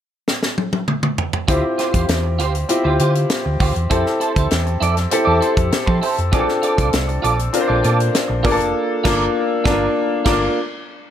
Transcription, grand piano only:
1.48 C4 E4 F4 G4
2.69 C4 E4 F4 G4
3.90 C4 E4 G4 A4
5.11 C4 E4 G4 A4
6.32 C4 D4 F4 G#4
6.40 A4
7.53 C4 D4 F4 A#4
7.61 C5
8.44 A#3 D4 F4 G#4
8.52 A4
9.04 A#3 D4 F4
9.65 D4 F4
9.71 A#3
10.26 D4 F4
10.32 A#3

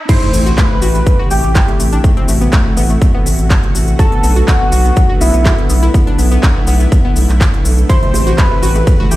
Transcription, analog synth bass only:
0.33 A1
0.82 A1
1.31 A1
1.44 A1
1.80 A1
2.28 A1
2.77 A1
3.26 A1
3.39 A1
3.75 A1
4.23 B1
4.72 B1
5.21 B1
5.34 B1
5.70 B1
6.19 B1
6.67 B1
7.16 B1
7.29 B1
7.65 B1
8.14 A1
8.63 A1
9.11 A1

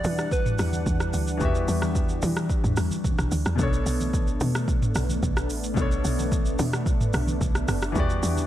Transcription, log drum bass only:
0.05 E3
0.59 E2
0.86 E2
1.14 D2
1.41 E2
1.68 E2
2.23 E3
2.64 E2
2.77 E2
3.19 B1
3.32 D2
3.46 E2
3.59 B1
3.86 B1
4.41 B2
4.95 B1
5.23 B1
5.50 A1
5.77 B1
6.05 B1
6.59 B2
7.14 B1
7.41 B1
7.68 F#1
7.96 E2
8.23 E2

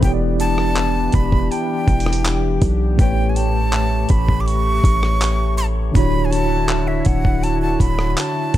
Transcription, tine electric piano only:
0.00 E3 B3 E4
0.05 G4 C#5
0.14 D5
2.95 A2 A3 G4
3.01 B4 C#5
5.92 D3 D4 E4
5.97 F#4 C#5

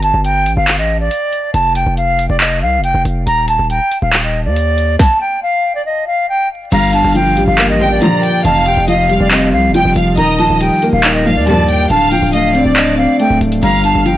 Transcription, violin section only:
6.72 F5
7.80 G5
8.02 A#5
8.23 G5
8.45 F5
8.88 D#5
9.10 F5
9.74 G5
9.96 F5
10.17 D#5
11.25 F5
11.47 A5
11.69 G5
11.90 F5
12.33 D#5
12.55 D5
13.63 F5

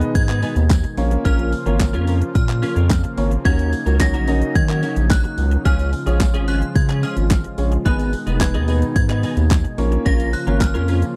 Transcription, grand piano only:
Already playing: B3 D#4 G#4 B4 D#5
0.97 A#3 C#4 F4 A#4 C#5
1.66 A#3 C#4 F4 A#4 C#5
3.17 A#3 C#4 F4 A#4 C#5
3.45 C#4 D#4 F#4 A#4 C#5
4.00 C#4 D#4 F#4 A#4 C#5
4.28 C#4 D#4 F#4 A#4 D#5
5.65 G#3 C#4 F4 G#4 C#5
6.06 G#3 C#4 F4 G#4 C#5
7.58 G#3 C#4 F4 G#4 C#5
7.85 G#3 B3 D#4 G#4 B4
8.40 G#3 B3 D#4 G#4 B4
8.68 G#3 B3 D#4 G#4 B4
9.78 A#3 C#4 F4 A#4 C#5
10.47 A#3 C#4 F4 A#4 C#5

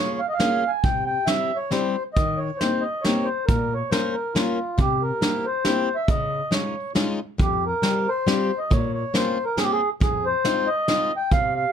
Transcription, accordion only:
Already playing: C#5
0.19 F5
0.29 D#5
0.33 F5
0.68 G#5
0.84 G5
1.06 G5
1.26 E5
1.56 C#5
1.72 C5
2.14 D#5
2.37 C#5
2.58 C5
2.81 D#5
3.01 C#5
3.25 C5
3.46 A#4
3.74 C#5
3.90 C5
4.13 A#4
4.35 F4
4.79 G4
5.02 A#4
5.46 C5
5.95 E5
6.10 D#5
6.52 C#5
7.41 G4
7.66 A#4
8.08 C5
8.58 D#5
8.72 C#5
8.94 C#5
9.15 C5
9.45 A#4
9.57 G#4
9.63 G4
9.72 G#4
10.02 G#4
10.25 C5
10.67 D#5
11.17 G5
11.32 F5
11.55 F5

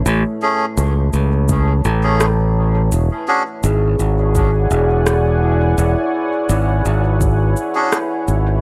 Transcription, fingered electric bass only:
0.06 A1
0.77 C#2
1.13 C#2
1.85 A1
2.92 E1
3.64 G#1
3.99 G#1
4.71 E1
5.78 E1
6.49 G#1
6.85 G#1
8.28 G#1

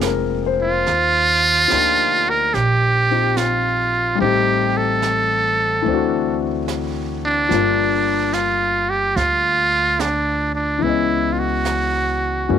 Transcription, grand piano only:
Already playing: F3 G#3 A#3 C4 D4 F4 G#4 G5
0.02 A#4
0.46 C5
1.68 F3 A#3 D4
1.72 D#4 G4
3.10 C4 D#4 F4 G4
4.15 G3 A3
4.20 C4 D#4
4.26 G4
5.82 E3 A3
5.87 C4 D4
5.93 F#4
7.49 F3 G3 A#3 D4
7.54 F4
10.78 E3 G#3
10.83 B3 C#4
10.89 D#5
12.49 E3 F#3 G#3 A#3 C#4

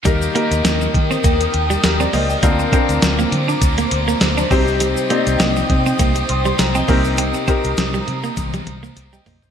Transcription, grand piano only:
0.05 D#3 A#3 D#4 G4 A#4
0.34 A#3 D#4 G4 A#4
1.84 G4 A#4
2.00 A#4 D5
2.13 C5 D#5
2.29 D#5 G5
2.43 D3 C4 D4 F4 A#4
2.72 C4 D4 F4 A#4
4.50 C3 C4 D#4 G4 C5
5.10 C4 D#4 G4 D5
5.17 D#5
6.29 C6 D#6
6.46 C6
6.59 G5 A#5
6.75 D#5 G5
6.88 C3 C4 D#4 G4 A#4
7.47 C4 D#4 G4 A#4
9.13 D#5 G5
9.26 C5 D#5
9.43 C5

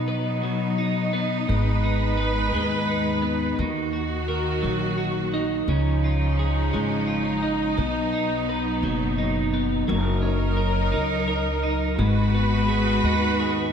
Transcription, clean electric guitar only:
Already playing: B2 D#4
0.08 B4
0.43 F#3
0.78 D#4
1.13 B3
1.48 G#2
1.84 D#4
2.17 B4
2.54 G#3
2.87 D#4
3.22 B3
3.59 D#3
3.93 F#4
4.28 A#4
4.63 F#3
4.98 F#4
5.34 D#4
5.69 C#3
6.04 F4
6.39 G#4
6.73 G#3
7.07 F4
7.43 D#4
7.77 B2
8.12 D#4
8.49 B4
8.84 F#3
9.18 D#4
9.54 B3
9.88 F#3
10.22 C#4
10.57 A#4
10.92 D#4
11.28 A#4
11.63 D#4
11.99 G#2
12.35 B3
12.68 G#4
13.05 D#4
13.40 G#4

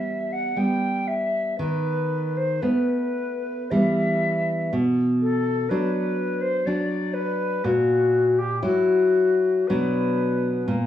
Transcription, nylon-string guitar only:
Already playing: G3 B3
0.56 G3 B3
1.59 D#3
2.62 A3 B3
3.71 E3 G3 B3
4.73 B2
5.71 F#3 D4
6.67 F#3 D4
7.64 A#2
8.62 F#3 E4
9.70 B2 F#3 D4
10.68 A#2

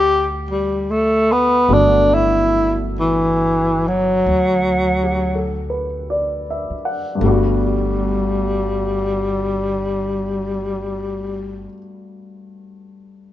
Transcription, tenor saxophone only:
Already playing: G4
0.51 G3
0.91 A3
1.32 B3
1.73 D4
2.14 E4
3.00 E3
3.88 F#3
7.23 G3

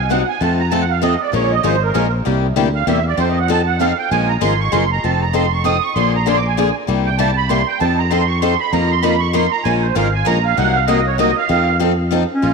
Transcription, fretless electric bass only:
Already playing: C2
0.41 F2
1.33 A#1
1.64 G#1
1.95 A#1
2.27 C2
2.56 D2
2.87 E2
3.18 F2
4.11 A#1
4.41 G#1
4.73 F#1
5.04 F1
5.96 A#1
6.88 C2
7.81 F2
8.73 F2
9.65 A#1
9.96 G#1
10.27 A#1
10.58 C2
11.50 F2
12.43 A#1

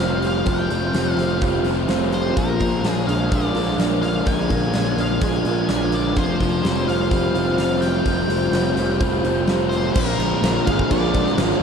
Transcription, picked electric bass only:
0.00 F1
0.46 F1
0.70 F1
0.94 F1
1.17 F1
1.42 F1
1.63 F1
1.88 F1
2.37 A#1
2.61 A#1
2.84 A#1
3.07 A#1
3.32 A#1
3.53 A#1
3.78 A#1
4.26 A#1
4.51 A#1
4.74 A#1
4.96 A#1
5.21 A#1
5.45 A#1
5.69 A#1
6.17 F1
6.41 F1
6.64 F1
6.87 F1
7.11 F1
7.34 F1
7.58 F1
8.06 F1
8.28 F1
8.51 F1
8.76 F1
9.01 F1
9.23 F1
9.48 F1
9.96 A#1
10.18 A#1
10.42 A#1
10.68 G#1
10.91 A#1
11.38 G#1

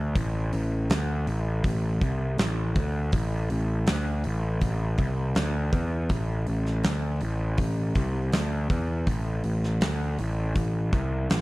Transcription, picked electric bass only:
Already playing: D2
0.16 A1
0.53 A1
0.90 D2
1.27 A1
1.65 A1
2.02 C2
2.39 A1
2.76 D2
3.13 A1
3.51 A1
3.88 D2
4.26 A1
4.62 A1
4.99 C2
5.37 D2
5.73 E2
6.10 A1
6.48 A1
6.85 D2
7.22 A1
7.59 A1
7.96 C2
8.33 D2
8.70 E2
9.07 A1
9.44 A1
9.81 D2
10.19 A1
10.56 A1
10.93 C2
11.31 A1

